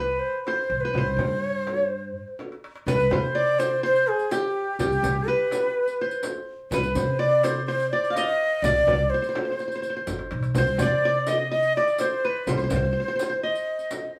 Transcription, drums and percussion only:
0.23 darbuka ka soft
0.47 darbuka tek medium
0.47 frame drum medium
0.58 darbuka ka soft
0.94 darbuka dum medium
0.94 frame drum medium
1.19 darbuka dum medium
1.19 frame drum medium
1.55 darbuka ka soft
1.67 darbuka tek medium
1.67 frame drum medium
1.91 darbuka ka soft
2.15 darbuka ka soft
2.28 darbuka ka soft
2.39 darbuka tek medium
2.39 frame drum medium
2.52 darbuka ka medium
2.64 darbuka tek medium
2.76 darbuka ka medium
2.87 riq soft
2.87 darbuka dum medium
2.87 frame drum medium
3.00 riq soft
3.00 darbuka ka soft
3.11 frame drum medium
3.11 darbuka dum medium
3.60 riq soft
3.60 frame drum medium
3.96 riq soft
3.96 darbuka ka soft
4.19 riq soft
4.31 riq soft
4.31 darbuka tek medium
4.31 frame drum medium
4.68 darbuka ka soft
4.79 riq medium
4.79 darbuka dum medium
4.79 frame drum medium
4.92 riq soft
4.92 darbuka ka soft
5.03 riq medium
5.03 frame drum medium
5.03 darbuka dum medium
5.51 riq soft
5.51 darbuka tek medium
5.51 frame drum medium
5.87 riq soft
5.87 darbuka ka soft
6.11 riq soft
6.23 riq soft
6.23 darbuka tek medium
6.23 frame drum medium
6.59 darbuka ka soft
6.71 riq medium
6.71 darbuka dum medium
6.71 frame drum medium
6.83 riq soft
6.83 darbuka ka soft
6.95 riq medium
6.95 darbuka dum medium
6.95 frame drum medium
7.43 riq soft
7.43 darbuka tek medium
7.43 frame drum medium
7.80 riq soft
8.05 riq soft
8.16 riq soft
8.16 darbuka tek medium
8.16 frame drum medium
8.53 darbuka ka soft
8.64 riq medium
8.64 frame drum medium
8.64 darbuka dum medium
8.76 riq soft
8.88 frame drum medium
8.88 darbuka dum medium
9.24 riq soft
9.24 darbuka ka soft
9.35 darbuka tek medium
9.35 frame drum medium
9.59 riq soft
9.72 riq soft
9.72 darbuka ka soft
9.83 riq soft
9.96 darbuka ka soft
10.07 riq soft
10.07 darbuka tek medium
10.07 frame drum medium
10.19 darbuka ka medium
10.31 darbuka tek medium
10.43 riq soft
10.43 darbuka ka medium
10.54 riq medium
10.54 darbuka dum medium
10.54 frame drum medium
10.67 riq soft
10.78 riq medium
10.78 frame drum medium
10.78 darbuka dum medium
11.27 riq soft
11.27 darbuka tek medium
11.27 frame drum medium
11.63 riq soft
11.63 darbuka ka soft
11.88 riq soft
11.98 riq medium
11.98 darbuka tek medium
11.98 frame drum medium
12.35 darbuka ka soft
12.47 riq soft
12.47 frame drum medium
12.47 darbuka dum medium
12.59 riq soft
12.70 riq medium
12.70 frame drum medium
12.70 darbuka dum medium
13.19 riq soft
13.19 frame drum medium
13.55 riq soft
13.55 darbuka ka soft
13.79 riq soft
13.91 riq medium
13.91 darbuka tek medium
13.91 frame drum medium

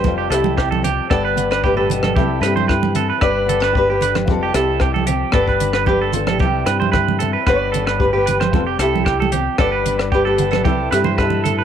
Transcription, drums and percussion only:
0.04 kick medium
0.04 high conga medium
0.32 cross-stick medium
0.32 closed hi-hat soft
0.44 high conga medium
0.58 kick medium
0.58 cross-stick medium
0.72 high conga medium
0.84 closed hi-hat soft
0.84 low conga medium
1.11 kick loud
1.11 cross-stick medium
1.37 closed hi-hat soft
1.37 low conga medium
1.52 cross-stick medium
1.64 kick medium
1.90 closed hi-hat soft
1.90 low conga medium
2.03 cross-stick medium
2.03 high conga medium
2.16 kick medium
2.16 high conga medium
2.43 cross-stick medium
2.43 closed hi-hat soft
2.57 high conga medium
2.69 kick medium
2.69 cross-stick medium
2.83 high conga medium
2.95 closed hi-hat soft
2.95 low conga medium
3.21 kick medium
3.21 cross-stick medium
3.49 closed hi-hat soft
3.49 low conga medium
3.62 cross-stick medium
3.75 kick medium
4.01 closed hi-hat soft
4.01 low conga medium
4.15 cross-stick medium
4.15 high conga medium
4.28 kick medium
4.28 high conga medium
4.54 cross-stick medium
4.54 closed hi-hat soft
4.80 kick medium
4.80 cross-stick medium
4.96 high conga medium
5.07 closed hi-hat soft
5.07 low conga medium
5.32 kick medium
5.32 cross-stick medium
5.48 kick medium
5.60 closed hi-hat soft
5.60 low conga soft
5.73 cross-stick medium
5.86 kick medium
5.86 high conga soft
6.13 closed hi-hat soft
6.13 low conga medium
6.27 cross-stick medium
6.27 high conga medium
6.39 kick medium
6.39 high conga medium
6.67 cross-stick medium
6.67 closed hi-hat soft
6.82 high conga medium
6.93 kick medium
6.93 cross-stick medium
6.93 low conga medium
7.08 high conga medium
7.20 closed hi-hat soft
7.20 low conga medium
7.47 kick loud
7.47 cross-stick medium
7.74 closed hi-hat soft
7.74 low conga medium
7.87 cross-stick medium
8.00 kick medium
8.27 closed hi-hat soft
8.27 low conga medium
8.41 cross-stick medium
8.41 high conga medium
8.53 kick medium
8.53 high conga medium
8.79 cross-stick medium
8.79 closed hi-hat soft
8.96 high conga medium
9.06 kick medium
9.06 cross-stick medium
9.22 high conga medium
9.32 closed hi-hat soft
9.32 low conga medium
9.58 kick loud
9.58 cross-stick medium
9.86 closed hi-hat medium
9.86 low conga medium
9.99 cross-stick medium
10.12 kick medium
10.38 closed hi-hat soft
10.38 low conga medium
10.53 cross-stick medium
10.53 high conga medium
10.65 kick medium
10.65 high conga medium
10.92 cross-stick medium
10.92 closed hi-hat soft
11.04 high conga medium
11.18 kick medium
11.18 cross-stick medium
11.30 high conga medium
11.45 closed hi-hat soft
11.45 low conga medium

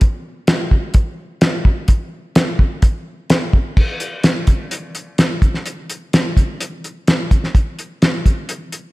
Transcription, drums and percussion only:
0.01 kick loud
0.01 closed hi-hat medium
0.47 snare loud
0.47 closed hi-hat medium
0.71 kick medium
0.94 kick loud
0.94 closed hi-hat medium
1.41 snare loud
1.41 closed hi-hat medium
1.65 kick medium
1.88 kick loud
1.88 closed hi-hat medium
2.35 snare loud
2.35 closed hi-hat medium
2.59 kick medium
2.82 kick loud
2.82 closed hi-hat medium
3.30 snare loud
3.30 closed hi-hat medium
3.53 kick medium
3.77 kick loud
3.77 crash medium
4.00 closed hi-hat medium
4.24 snare loud
4.24 closed hi-hat medium
4.47 kick medium
4.47 closed hi-hat medium
4.71 closed hi-hat medium
4.95 closed hi-hat medium
5.18 snare loud
5.18 closed hi-hat medium
5.42 kick medium
5.42 closed hi-hat medium
5.54 snare soft
5.66 closed hi-hat medium
5.90 closed hi-hat medium
6.13 snare loud
6.13 closed hi-hat medium
6.37 kick medium
6.37 closed hi-hat medium
6.60 closed hi-hat medium
6.84 closed hi-hat soft
7.08 snare medium
7.08 closed hi-hat medium
7.31 kick medium
7.31 closed hi-hat medium
7.44 snare soft
7.55 kick loud
7.55 closed hi-hat medium
7.79 closed hi-hat medium
8.02 snare medium
8.02 closed hi-hat medium
8.26 kick medium
8.26 closed hi-hat medium
8.49 closed hi-hat medium
8.72 closed hi-hat medium

